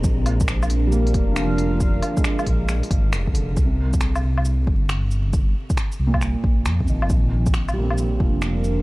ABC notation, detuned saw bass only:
X:1
M:4/4
L:1/16
Q:"Swing 16ths" 1/4=136
K:Bbmix
V:1 name="Detuned saw bass" clef=bass
B,,,6 B,,,4 F,,,6- | F,,,2 z4 B,,,2 B,,, z A,,,2 F,,, D,, F,,,2 | C,,6 C,,4 G,,,6- | G,,,2 z4 C,,2 C,, z B,,,2 F,,2 B,,, G,,, |
B,,,6 B,,,4 F,,,6 |]